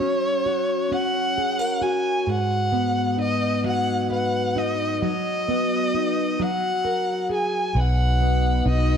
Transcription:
0.00 2.30 F#3 medium
0.00 0.90 C#4 soft
0.00 0.94 C#5 medium
0.46 1.81 F#4 soft
0.91 2.37 C#4 soft
0.91 1.84 F#5 medium
1.38 1.59 G#4 soft
1.59 2.37 A#4 soft
1.81 3.17 F#4 soft
1.81 2.31 G#5 medium
2.27 5.01 G#2 medium
2.27 3.20 F#5 medium
2.72 5.10 B3 soft
3.17 4.55 D#4 soft
3.21 3.63 D#5 medium
3.64 5.02 F#3 medium
3.64 4.08 F#5 medium
4.10 5.10 B4 soft
4.10 4.60 F#5 medium
4.56 5.10 D#4 soft
4.56 5.02 D#5 medium
5.02 6.39 F#3 medium
5.02 6.44 D#5 medium
5.48 6.48 B3 soft
5.94 6.48 D#4 soft
6.39 8.97 F#3 medium
6.39 7.31 F#5 medium
6.85 7.84 A#4 soft
7.29 7.84 G#4 soft
7.34 7.81 G#5 medium
7.75 8.62 B1 medium
7.75 8.97 F#3 soft
7.75 8.97 B3 soft
7.75 8.97 D#4 soft
7.75 8.97 B4 medium
7.80 8.69 F#5 medium
8.20 8.97 B3 soft
8.66 8.97 B1 medium
8.66 8.97 D#4 soft
8.70 8.97 D#5 medium

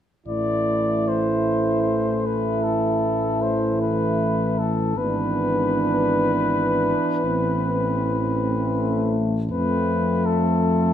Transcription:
0.26 4.92 A1 soft
0.26 4.92 E3 soft
0.26 4.93 A3 soft
0.26 4.92 E4 soft
0.26 1.10 D5 medium
1.08 2.28 C5 soft
2.26 2.65 B4 soft
2.64 3.43 A4 medium
3.42 3.81 C5 soft
3.82 4.60 B4 medium
4.59 4.99 A4 soft
4.96 6.93 G#1 soft
4.96 9.20 E3 soft
4.96 8.07 B3 soft
4.96 7.21 D4 soft
4.96 9.25 B4 medium
7.24 9.52 A1 soft
7.24 9.35 C4 soft
8.38 9.48 A3 soft
9.51 10.93 F2 soft
9.51 10.93 F3 soft
9.51 10.93 A3 soft
9.51 10.93 C4 soft
9.51 10.27 B4 medium
10.26 10.93 A4 medium

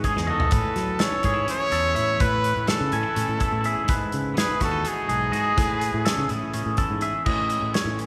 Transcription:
0.00 0.49 G#2 medium
0.00 1.00 E3 medium
0.00 0.55 B3 medium
0.00 closed hi-hat medium
0.04 0.17 C#4 medium
0.04 0.28 G#4 medium
0.04 0.32 G#4 medium
0.04 kick medium
0.16 0.38 E2 medium
0.16 0.52 D#4 soft
0.16 snare soft
0.27 0.50 F#4 medium
0.27 1.04 A4 medium
0.27 0.51 D#5 medium
0.27 mid tom medium
0.40 floor tom loud
0.51 0.63 A2 medium
0.51 1.72 A2 medium
0.51 1.00 B4 medium
0.51 kick loud
0.51 closed hi-hat medium
0.76 0.98 F#3 medium
0.76 snare soft
0.76 closed hi-hat medium
0.99 2.66 E3 medium
0.99 1.22 C#4 soft
0.99 1.24 A4 medium
0.99 1.49 C#5 medium
0.99 snare loud
0.99 closed hi-hat medium
1.23 1.46 G#2 medium
1.23 1.34 C#4 medium
1.23 1.72 G#4 medium
1.23 kick medium
1.23 closed hi-hat medium
1.34 1.69 E4 medium
1.46 2.16 C#4 medium
1.46 2.23 C#5 loud
1.46 closed hi-hat medium
1.69 2.19 E2 medium
1.69 1.94 E2 medium
1.69 1.96 E4 medium
1.69 1.96 A4 medium
1.69 snare soft
1.69 closed hi-hat medium
1.95 2.18 A2 medium
1.95 2.92 E4 medium
1.95 2.20 E5 medium
1.95 closed hi-hat medium
2.19 3.40 A2 medium
2.19 2.53 A2 medium
2.19 2.67 B4 medium
2.19 2.68 B4 loud
2.19 kick loud
2.19 closed hi-hat medium
2.44 closed hi-hat medium
2.57 2.67 A2 medium
2.66 4.34 E3 medium
2.66 2.91 C#4 medium
2.66 2.92 A4 medium
2.66 3.68 A4 medium
2.66 snare loud
2.66 closed hi-hat medium
2.81 2.91 C#3 medium
2.92 3.03 A2 medium
2.92 3.03 C#4 medium
2.92 3.41 G#5 medium
2.92 closed hi-hat medium
3.03 3.37 E4 medium
3.15 3.27 A2 medium
3.15 3.85 C#4 medium
3.15 closed hi-hat medium
3.29 3.39 A2 medium
3.36 3.84 E2 medium
3.36 3.60 E4 medium
3.36 closed hi-hat medium
3.41 3.65 A4 medium
3.41 kick medium
3.52 3.74 A2 medium
3.61 4.59 E4 medium
3.61 closed hi-hat medium
3.65 4.10 G#4 medium
3.65 3.89 E5 medium
3.84 5.06 G#2 medium
3.84 closed hi-hat medium
3.89 4.00 G#2 medium
3.89 4.37 B4 medium
3.89 kick loud
4.12 4.35 C#3 medium
4.12 closed hi-hat medium
4.34 6.04 E3 medium
4.34 4.83 B3 medium
4.34 4.60 B4 medium
4.34 snare loud
4.34 closed hi-hat medium
4.38 4.61 G#4 medium
4.60 4.83 D#2 medium
4.60 4.71 C#4 medium
4.60 5.09 F#4 medium
4.60 kick medium
4.60 snare soft
4.60 closed hi-hat medium
4.64 4.89 A4 loud
4.71 5.06 D#4 soft
4.85 5.54 B3 medium
4.85 6.79 G#4 medium
4.85 closed hi-hat medium
5.07 5.31 B1 medium
5.07 5.53 G#2 medium
5.07 5.54 D#4 medium
5.07 5.33 G#4 medium
5.07 closed hi-hat medium
5.32 5.54 G#2 medium
5.32 5.54 F#4 medium
5.32 5.57 D#5 medium
5.32 closed hi-hat medium
5.57 6.77 A2 medium
5.57 5.90 A2 medium
5.57 6.05 B4 medium
5.57 kick loud
5.57 closed hi-hat medium
5.81 closed hi-hat medium
5.94 6.05 A2 medium
6.05 7.27 E3 medium
6.05 6.52 C#4 medium
6.05 6.30 A4 medium
6.05 snare loud
6.05 closed hi-hat medium
6.18 6.29 C#3 medium
6.29 6.41 A2 medium
6.29 6.78 E4 medium
6.29 6.78 G#4 medium
6.29 closed hi-hat medium
6.53 6.65 A2 medium
6.53 7.23 C#4 medium
6.53 closed hi-hat medium
6.66 6.77 A2 medium
6.77 7.25 E2 medium
6.77 7.24 E4 medium
6.77 7.02 A4 medium
6.77 kick medium
6.77 closed hi-hat medium
6.90 7.12 G#2 medium
7.01 7.23 G#4 medium
7.01 7.25 E5 medium
7.01 closed hi-hat medium
7.26 7.59 A2 medium
7.26 8.06 A2 medium
7.26 7.98 E3 medium
7.26 7.74 C#4 medium
7.26 7.52 E4 medium
7.26 8.06 G#4 medium
7.26 7.74 D#5 medium
7.26 kick medium
7.26 crash medium
7.50 8.06 E4 medium
7.50 closed hi-hat medium
7.62 7.73 A2 medium
7.74 8.06 C#4 medium
7.74 7.98 C#5 medium
7.74 snare loud
7.74 closed hi-hat medium
7.85 8.06 A2 medium
7.99 8.06 E3 medium
7.99 closed hi-hat soft

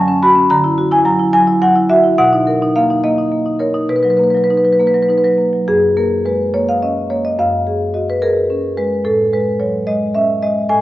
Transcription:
0.00 0.47 D3 loud
0.00 0.17 F#3 medium
0.00 0.22 A5 loud
0.08 0.31 C#4 medium
0.23 0.46 F#4 medium
0.23 0.50 B5 loud
0.35 0.50 C#4 medium
0.50 2.14 D3 medium
0.50 0.91 A#5 loud
0.64 0.87 E4 medium
0.78 1.01 F#4 medium
0.92 1.14 E4 medium
0.92 1.06 G#5 loud
1.05 1.28 F#3 medium
1.05 1.33 A#5 loud
1.19 1.42 E4 medium
1.33 1.56 F#3 medium
1.33 1.61 G#5 loud
1.47 1.70 E4 medium
1.62 1.85 F#3 medium
1.62 1.89 F#5 loud
1.75 1.98 E4 medium
1.90 2.13 F#4 medium
1.90 2.17 E5 loud
2.04 2.18 E4 medium
2.18 3.87 B2 medium
2.18 2.73 F#5 loud
2.33 2.56 D#4 medium
2.47 2.70 A#4 medium
2.62 2.85 D#4 medium
2.76 2.99 A#3 medium
2.76 3.03 F5 medium
2.90 3.13 D#4 medium
3.03 3.27 A#3 medium
3.03 3.59 D#5 medium
3.18 3.41 D#4 medium
3.32 3.55 A#3 soft
3.46 3.70 D#4 soft
3.59 3.84 A#4 medium
3.59 3.89 C#5 medium
3.74 3.90 D#4 medium
3.89 5.63 B2 medium
3.89 3.96 B4 medium
3.96 4.03 B4 medium
4.03 4.29 F#3 medium
4.03 4.10 B4 medium
4.10 4.17 B4 medium
4.17 4.44 A#3 medium
4.17 4.24 B4 medium
4.24 4.30 B4 medium
4.30 4.37 B4 medium
4.35 4.59 F#3 soft
4.35 4.44 B4 medium
4.44 4.50 B4 medium
4.50 4.74 D#4 soft
4.50 4.57 B4 medium
4.57 4.64 B4 medium
4.64 4.88 F#3 soft
4.64 4.72 B4 medium
4.72 4.81 B4 medium
4.80 5.03 A#3 medium
4.80 4.87 B4 medium
4.87 4.94 B4 medium
4.94 5.18 F#3 soft
4.94 5.02 B4 medium
5.02 5.10 B4 medium
5.08 5.33 D#4 soft
5.08 5.18 B4 medium
5.18 5.24 B4 medium
5.24 5.48 F#3 soft
5.24 5.34 B4 medium
5.38 5.62 A#3 soft
5.53 5.68 F#3 soft
5.68 7.34 F#2 medium
5.68 5.96 G#4 medium
5.97 6.42 A#3 soft
5.97 6.24 A#4 medium
6.25 6.54 G#3 soft
6.25 6.53 B4 medium
6.54 6.99 A#3 soft
6.54 6.68 C#5 medium
6.69 6.82 F5 medium
6.82 7.27 C#4 soft
6.82 7.09 D#5 medium
7.10 7.38 A#3 soft
7.10 7.24 C#5 medium
7.25 7.39 D#5 medium
7.39 9.01 F#2 medium
7.39 7.92 F5 medium
7.67 8.11 G#4 soft
7.94 8.22 F#4 soft
7.94 8.08 D#5 medium
8.10 8.23 B4 medium
8.22 8.67 G#4 soft
8.22 8.75 A#4 medium
8.50 8.94 C#4 soft
8.77 9.05 G#3 soft
8.77 9.04 B4 medium
9.05 10.66 A2 medium
9.05 9.31 A4 medium
9.33 9.76 G#3 soft
9.33 9.59 B4 medium
9.60 9.87 F#3 soft
9.60 9.86 C#5 medium
9.87 10.31 G#3 soft
9.87 10.14 D#5 medium
10.15 10.59 C#4 soft
10.15 10.41 E5 medium
10.43 10.70 G#3 soft
10.43 10.69 D#5 medium
10.69 10.81 A2 medium
10.69 10.81 G#5 medium

